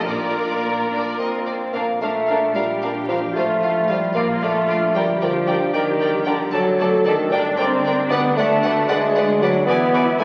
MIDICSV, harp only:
0, 0, Header, 1, 2, 480
1, 0, Start_track
1, 0, Key_signature, -2, "major"
1, 0, Tempo, 549954
1, 68, Time_signature, 6, 3, 24, 8
1, 2467, Tempo, 526778
1, 9223, End_track
2, 0, Start_track
2, 0, Title_t, "Harp"
2, 0, Program_c, 0, 46
2, 0, Note_on_c, 0, 46, 36
2, 0, Note_on_c, 0, 58, 31
2, 0, Note_on_c, 0, 62, 29
2, 21, Note_on_c, 0, 65, 30
2, 1461, Note_off_c, 0, 46, 0
2, 1517, Note_on_c, 0, 46, 46
2, 1741, Note_off_c, 0, 58, 0
2, 1752, Note_on_c, 0, 58, 33
2, 1980, Note_off_c, 0, 62, 0
2, 1990, Note_on_c, 0, 62, 36
2, 2218, Note_off_c, 0, 65, 0
2, 2228, Note_on_c, 0, 65, 38
2, 2456, Note_off_c, 0, 62, 0
2, 2466, Note_on_c, 0, 62, 39
2, 2711, Note_on_c, 0, 53, 39
2, 2965, Note_off_c, 0, 58, 0
2, 2967, Note_off_c, 0, 46, 0
2, 2970, Note_off_c, 0, 62, 0
2, 3181, Note_off_c, 0, 53, 0
2, 3192, Note_on_c, 0, 53, 36
2, 3425, Note_off_c, 0, 65, 0
2, 3431, Note_on_c, 0, 60, 35
2, 3436, Note_on_c, 0, 65, 38
2, 3674, Note_on_c, 0, 46, 49
2, 3693, Note_off_c, 0, 60, 0
2, 3913, Note_off_c, 0, 53, 0
2, 3924, Note_on_c, 0, 53, 39
2, 4157, Note_off_c, 0, 65, 0
2, 4163, Note_on_c, 0, 62, 37
2, 4170, Note_on_c, 0, 65, 42
2, 4403, Note_on_c, 0, 43, 51
2, 4422, Note_off_c, 0, 46, 0
2, 4638, Note_on_c, 0, 50, 39
2, 4870, Note_off_c, 0, 62, 0
2, 4881, Note_on_c, 0, 62, 43
2, 5118, Note_on_c, 0, 70, 45
2, 5361, Note_on_c, 0, 67, 47
2, 5589, Note_off_c, 0, 62, 0
2, 5600, Note_on_c, 0, 62, 46
2, 5832, Note_on_c, 0, 42, 59
2, 5857, Note_off_c, 0, 50, 0
2, 5857, Note_off_c, 0, 70, 0
2, 5859, Note_off_c, 0, 43, 0
2, 5860, Note_off_c, 0, 67, 0
2, 5862, Note_off_c, 0, 53, 0
2, 5863, Note_off_c, 0, 65, 0
2, 6078, Note_on_c, 0, 57, 44
2, 6302, Note_off_c, 0, 62, 0
2, 6312, Note_on_c, 0, 62, 44
2, 6318, Note_on_c, 0, 69, 46
2, 6554, Note_on_c, 0, 43, 61
2, 6576, Note_off_c, 0, 42, 0
2, 6577, Note_off_c, 0, 69, 0
2, 6578, Note_off_c, 0, 57, 0
2, 6792, Note_on_c, 0, 58, 52
2, 7020, Note_off_c, 0, 62, 0
2, 7028, Note_on_c, 0, 62, 47
2, 7036, Note_on_c, 0, 67, 52
2, 7269, Note_on_c, 0, 50, 66
2, 7290, Note_off_c, 0, 43, 0
2, 7291, Note_off_c, 0, 58, 0
2, 7293, Note_off_c, 0, 67, 0
2, 7511, Note_on_c, 0, 59, 45
2, 7748, Note_on_c, 0, 66, 53
2, 7989, Note_on_c, 0, 74, 57
2, 8229, Note_on_c, 0, 71, 58
2, 8457, Note_off_c, 0, 66, 0
2, 8468, Note_on_c, 0, 66, 55
2, 8702, Note_on_c, 0, 52, 65
2, 8723, Note_off_c, 0, 50, 0
2, 8726, Note_off_c, 0, 66, 0
2, 8945, Note_on_c, 0, 56, 49
2, 9184, Note_on_c, 0, 64, 51
2, 9223, Note_off_c, 0, 52, 0
2, 9223, Note_off_c, 0, 56, 0
2, 9223, Note_off_c, 0, 59, 0
2, 9223, Note_off_c, 0, 62, 0
2, 9223, Note_off_c, 0, 64, 0
2, 9223, Note_off_c, 0, 71, 0
2, 9223, Note_off_c, 0, 74, 0
2, 9223, End_track
0, 0, End_of_file